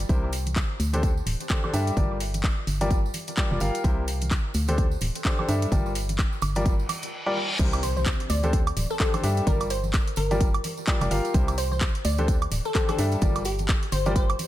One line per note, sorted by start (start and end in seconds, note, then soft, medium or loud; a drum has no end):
0.00 tambourine soft
0.09 0.64 C2 loud
0.09 0.28 C3 medium
0.09 0.28 E4 medium
0.09 0.28 G4 medium
0.09 0.28 A#4 medium
0.09 0.28 C5 medium
0.09 kick loud
0.09 closed hi-hat soft
0.09 tambourine medium
0.09 high conga medium
0.33 open hi-hat loud
0.33 tambourine medium
0.46 closed hi-hat medium
0.46 tambourine soft
0.46 high conga medium
0.56 kick loud
0.56 clap loud
0.56 closed hi-hat soft
0.56 tambourine medium
0.80 1.22 D2 loud
0.80 open hi-hat medium
0.80 tambourine medium
0.93 1.09 D3 medium
0.93 1.09 D4 medium
0.93 1.09 G4 medium
0.93 1.09 A4 medium
0.93 1.09 C5 medium
0.93 closed hi-hat medium
0.93 tambourine soft
0.93 high conga medium
1.03 kick loud
1.03 closed hi-hat soft
1.03 tambourine medium
1.17 tambourine soft
1.26 1.36 D1 medium
1.26 open hi-hat loud
1.26 tambourine medium
1.26 high conga medium
1.40 closed hi-hat medium
1.40 tambourine soft
1.49 1.62 D3 medium
1.49 1.62 D4 medium
1.49 1.62 G4 medium
1.49 1.62 A4 medium
1.49 1.62 C5 medium
1.49 kick loud
1.49 clap loud
1.49 closed hi-hat medium
1.49 tambourine medium
1.64 1.72 D3 medium
1.64 1.72 D4 medium
1.64 1.72 G4 medium
1.64 1.72 A4 medium
1.64 1.72 C5 medium
1.64 high conga medium
1.64 high woodblock medium
1.73 1.91 G2 medium
1.73 1.95 G3 medium
1.73 1.95 D4 medium
1.73 1.95 G4 medium
1.73 1.95 A4 medium
1.73 1.95 E5 medium
1.73 open hi-hat medium
1.73 tambourine loud
1.87 closed hi-hat medium
1.87 tambourine soft
1.97 2.51 G1 loud
1.97 2.15 G3 medium
1.97 2.15 F4 medium
1.97 2.15 G4 medium
1.97 2.15 A#4 medium
1.97 2.15 D5 medium
1.97 kick loud
1.97 closed hi-hat medium
1.97 tambourine medium
1.97 high conga medium
2.20 open hi-hat loud
2.20 tambourine medium
2.34 closed hi-hat medium
2.34 tambourine soft
2.34 high conga medium
2.44 kick loud
2.44 clap loud
2.44 closed hi-hat medium
2.44 tambourine soft
2.67 3.10 G1 loud
2.67 open hi-hat medium
2.67 tambourine medium
2.81 2.97 G3 medium
2.81 2.97 F4 medium
2.81 2.97 G4 medium
2.81 2.97 A#4 medium
2.81 2.97 D5 medium
2.81 closed hi-hat medium
2.81 tambourine soft
2.81 high conga medium
2.91 kick loud
2.91 closed hi-hat medium
2.91 tambourine medium
3.06 tambourine soft
3.14 open hi-hat loud
3.14 tambourine loud
3.14 high conga medium
3.27 closed hi-hat medium
3.27 tambourine soft
3.37 3.49 G3 medium
3.37 3.49 F4 medium
3.37 3.49 G4 medium
3.37 3.49 A#4 medium
3.37 3.49 D5 medium
3.37 kick loud
3.37 clap loud
3.37 closed hi-hat medium
3.37 tambourine medium
3.51 3.58 F1 loud
3.51 3.59 G3 medium
3.51 3.59 F4 medium
3.51 3.59 G4 medium
3.51 3.59 A#4 medium
3.51 3.59 D5 medium
3.51 high conga medium
3.60 3.71 G1 loud
3.60 3.82 F4 medium
3.60 3.82 G4 medium
3.60 3.82 A#4 medium
3.60 3.82 F5 medium
3.60 open hi-hat medium
3.60 tambourine medium
3.75 closed hi-hat medium
3.75 tambourine soft
3.84 4.39 C2 loud
3.84 4.02 C3 medium
3.84 4.02 E4 medium
3.84 4.02 G4 medium
3.84 4.02 A#4 medium
3.84 4.02 C5 medium
3.84 kick loud
3.84 closed hi-hat medium
3.84 tambourine soft
3.84 high conga medium
4.08 open hi-hat loud
4.08 tambourine medium
4.21 closed hi-hat medium
4.21 tambourine soft
4.21 high conga medium
4.31 kick loud
4.31 clap loud
4.31 closed hi-hat medium
4.31 tambourine soft
4.54 4.97 D2 loud
4.54 open hi-hat medium
4.54 tambourine medium
4.68 4.84 D3 medium
4.68 4.84 D4 medium
4.68 4.84 G4 medium
4.68 4.84 A4 medium
4.68 4.84 C5 medium
4.68 closed hi-hat medium
4.68 tambourine soft
4.68 high conga medium
4.78 kick loud
4.78 closed hi-hat medium
4.78 tambourine soft
4.91 tambourine soft
5.01 5.11 D1 medium
5.01 open hi-hat loud
5.01 tambourine medium
5.01 high conga medium
5.15 closed hi-hat medium
5.15 tambourine soft
5.25 5.37 D3 medium
5.25 5.37 D4 medium
5.25 5.37 G4 medium
5.25 5.37 A4 medium
5.25 5.37 C5 medium
5.25 kick loud
5.25 clap loud
5.25 closed hi-hat medium
5.25 tambourine medium
5.39 5.47 D3 medium
5.39 5.47 D4 medium
5.39 5.47 G4 medium
5.39 5.47 A4 medium
5.39 5.47 C5 medium
5.39 high conga medium
5.39 high woodblock medium
5.48 5.66 G2 medium
5.48 5.70 G3 medium
5.48 5.70 D4 medium
5.48 5.70 G4 medium
5.48 5.70 A4 medium
5.48 5.70 E5 medium
5.48 open hi-hat medium
5.48 tambourine medium
5.62 closed hi-hat medium
5.62 tambourine soft
5.72 6.26 G1 loud
5.72 5.90 G3 medium
5.72 5.90 F4 medium
5.72 5.90 G4 medium
5.72 5.90 A#4 medium
5.72 5.90 D5 medium
5.72 kick loud
5.72 closed hi-hat medium
5.72 tambourine medium
5.72 high conga loud
5.86 tambourine soft
5.95 open hi-hat loud
5.95 tambourine medium
6.09 closed hi-hat medium
6.09 tambourine soft
6.09 high conga medium
6.19 kick loud
6.19 clap loud
6.19 closed hi-hat medium
6.19 tambourine medium
6.33 tambourine soft
6.42 6.85 G1 loud
6.42 open hi-hat medium
6.42 tambourine medium
6.42 high woodblock medium
6.55 6.72 G3 medium
6.55 6.72 F4 medium
6.55 6.72 G4 medium
6.55 6.72 A#4 medium
6.55 6.72 D5 medium
6.55 closed hi-hat medium
6.55 tambourine soft
6.55 high conga medium
6.65 kick loud
6.65 closed hi-hat medium
6.65 tambourine medium
6.65 reverse cymbal medium
6.79 tambourine soft
6.89 open hi-hat loud
6.89 tambourine medium
6.89 high conga medium
6.89 high woodblock medium
7.02 closed hi-hat medium
7.02 tambourine soft
7.26 7.35 G3 medium
7.26 7.35 F4 medium
7.26 7.35 G4 medium
7.26 7.35 A#4 medium
7.26 7.35 D5 loud
7.59 8.14 C2 loud
7.59 7.78 C3 medium
7.59 7.78 E4 medium
7.59 7.78 G4 medium
7.59 7.78 A#4 medium
7.59 7.78 C5 medium
7.59 kick loud
7.59 closed hi-hat medium
7.59 crash loud
7.59 tambourine medium
7.59 impact medium
7.59 high conga medium
7.73 closed hi-hat medium
7.73 tambourine soft
7.73 high woodblock medium
7.83 7.92 C5 medium
7.83 open hi-hat loud
7.83 tambourine medium
7.97 8.03 C5 medium
7.97 tambourine soft
7.97 high conga medium
8.06 kick loud
8.06 clap loud
8.06 closed hi-hat medium
8.06 tambourine medium
8.20 closed hi-hat medium
8.30 8.72 D2 loud
8.30 8.43 D5 medium
8.30 open hi-hat medium
8.30 tambourine loud
8.43 8.59 D3 medium
8.43 8.59 D4 medium
8.43 8.59 G4 medium
8.43 8.59 A4 medium
8.43 8.59 C5 medium
8.43 closed hi-hat soft
8.43 tambourine soft
8.43 high conga loud
8.53 kick loud
8.53 closed hi-hat medium
8.53 tambourine medium
8.67 closed hi-hat medium
8.67 high woodblock medium
8.77 8.86 D1 medium
8.77 open hi-hat loud
8.77 tambourine loud
8.77 high conga medium
8.90 8.97 A4 medium
8.90 tambourine soft
9.00 9.12 D3 medium
9.00 9.12 D4 medium
9.00 9.12 G4 medium
9.00 9.12 A4 medium
9.00 9.09 A4 medium
9.00 9.12 C5 medium
9.00 kick loud
9.00 clap loud
9.00 closed hi-hat medium
9.00 tambourine soft
9.14 9.22 D3 medium
9.14 9.22 D4 medium
9.14 9.22 G4 medium
9.14 9.22 A4 medium
9.14 9.22 C5 medium
9.14 closed hi-hat medium
9.14 tambourine soft
9.14 high conga loud
9.14 high woodblock medium
9.23 9.41 G2 medium
9.23 9.45 G3 medium
9.23 9.45 D4 medium
9.23 9.45 G4 medium
9.23 9.45 A4 medium
9.23 9.45 E5 medium
9.23 open hi-hat medium
9.23 tambourine medium
9.37 closed hi-hat soft
9.37 tambourine soft
9.47 10.01 G1 loud
9.47 9.65 G3 medium
9.47 9.65 F4 medium
9.47 9.65 G4 medium
9.47 9.65 A#4 medium
9.47 9.68 A#4 medium
9.47 9.65 D5 medium
9.47 kick loud
9.47 closed hi-hat medium
9.47 tambourine medium
9.47 high conga loud
9.60 closed hi-hat medium
9.60 tambourine soft
9.60 high woodblock medium
9.70 9.84 C5 medium
9.70 open hi-hat loud
9.70 tambourine loud
9.83 tambourine soft
9.83 high conga medium
9.93 kick loud
9.93 clap loud
9.93 closed hi-hat medium
9.93 tambourine medium
10.07 closed hi-hat medium
10.16 10.60 G1 loud
10.16 10.64 A#4 medium
10.16 open hi-hat loud
10.16 tambourine loud
10.31 10.47 G3 medium
10.31 10.47 F4 medium
10.31 10.47 G4 medium
10.31 10.47 A#4 medium
10.31 10.47 D5 medium
10.31 closed hi-hat soft
10.31 tambourine soft
10.31 high conga loud
10.40 kick loud
10.40 closed hi-hat medium
10.40 tambourine medium
10.54 closed hi-hat medium
10.54 high woodblock medium
10.64 open hi-hat loud
10.64 tambourine loud
10.64 high conga medium
10.77 tambourine soft
10.87 10.99 G3 medium
10.87 10.99 F4 medium
10.87 10.99 G4 medium
10.87 10.99 A#4 medium
10.87 10.99 D5 medium
10.87 kick loud
10.87 clap loud
10.87 closed hi-hat medium
10.87 tambourine medium
11.01 11.08 F1 loud
11.01 11.10 G3 medium
11.01 11.09 F4 medium
11.01 11.10 G4 medium
11.01 11.09 A#4 medium
11.01 11.10 D5 medium
11.01 closed hi-hat medium
11.01 tambourine soft
11.01 high conga loud
11.01 high woodblock medium
11.11 11.21 G1 loud
11.11 11.32 F4 medium
11.11 11.32 G4 medium
11.11 11.32 A#4 medium
11.11 11.32 F5 medium
11.11 open hi-hat medium
11.11 tambourine medium
11.25 closed hi-hat soft
11.25 tambourine soft
11.34 11.89 C2 loud
11.34 11.53 C3 medium
11.34 11.53 E4 medium
11.34 11.53 G4 medium
11.34 11.53 A#4 medium
11.34 11.53 C5 medium
11.34 kick loud
11.34 closed hi-hat medium
11.34 tambourine medium
11.34 high conga loud
11.48 closed hi-hat medium
11.48 tambourine soft
11.48 high woodblock medium
11.58 11.67 C5 medium
11.58 open hi-hat loud
11.58 tambourine loud
11.71 11.78 C5 medium
11.71 tambourine soft
11.71 high conga medium
11.81 kick loud
11.81 clap loud
11.81 closed hi-hat medium
11.81 tambourine medium
11.95 closed hi-hat medium
12.05 12.47 D2 loud
12.05 12.18 D5 medium
12.05 open hi-hat loud
12.05 tambourine loud
12.18 12.34 D3 medium
12.18 12.34 D4 medium
12.18 12.34 G4 medium
12.18 12.34 A4 medium
12.18 12.34 C5 loud
12.18 closed hi-hat soft
12.18 tambourine soft
12.18 high conga medium
12.28 kick loud
12.28 closed hi-hat medium
12.28 tambourine medium
12.42 closed hi-hat medium
12.42 high woodblock medium
12.51 12.61 D1 medium
12.51 open hi-hat loud
12.51 tambourine loud
12.51 high conga medium
12.65 12.72 A4 medium
12.65 tambourine soft
12.75 12.87 D3 medium
12.75 12.87 D4 medium
12.75 12.87 G4 medium
12.75 12.84 A4 medium
12.75 12.87 A4 medium
12.75 12.87 C5 medium
12.75 kick loud
12.75 clap loud
12.75 closed hi-hat medium
12.75 tambourine medium
12.89 12.97 D3 medium
12.89 12.97 D4 medium
12.89 12.97 G4 medium
12.89 12.98 A4 medium
12.89 12.97 A4 medium
12.89 12.97 C5 medium
12.89 closed hi-hat medium
12.89 tambourine soft
12.89 high conga medium
12.89 high woodblock medium
12.98 13.16 G2 medium
12.98 13.20 G3 medium
12.98 13.20 D4 medium
12.98 13.20 G4 medium
12.98 13.20 A4 medium
12.98 13.20 E5 medium
12.98 open hi-hat loud
12.98 tambourine loud
13.12 closed hi-hat soft
13.12 tambourine soft
13.21 13.76 G1 loud
13.21 13.40 G3 medium
13.21 13.40 F4 medium
13.21 13.40 G4 medium
13.21 13.40 A#4 medium
13.21 13.40 D5 medium
13.21 kick loud
13.21 closed hi-hat medium
13.21 tambourine medium
13.21 high conga loud
13.35 closed hi-hat medium
13.35 tambourine soft
13.35 high woodblock medium
13.45 13.59 G4 medium
13.45 open hi-hat loud
13.45 tambourine medium
13.59 closed hi-hat soft
13.59 tambourine soft
13.59 high conga medium
13.69 kick loud
13.69 clap loud
13.69 closed hi-hat medium
13.69 tambourine medium
13.83 closed hi-hat soft
13.92 14.35 G1 loud
13.92 14.01 C5 medium
13.92 open hi-hat loud
13.92 tambourine medium
14.06 14.22 G3 medium
14.06 14.22 F4 medium
14.06 14.22 G4 medium
14.06 14.22 A#4 medium
14.06 14.12 C5 medium
14.06 14.22 D5 medium
14.06 closed hi-hat soft
14.06 tambourine soft
14.06 high conga loud
14.16 14.47 C5 medium
14.16 kick loud
14.16 closed hi-hat medium
14.16 tambourine medium
14.30 closed hi-hat medium
14.30 high woodblock medium
14.39 open hi-hat loud
14.39 tambourine medium
14.39 high conga medium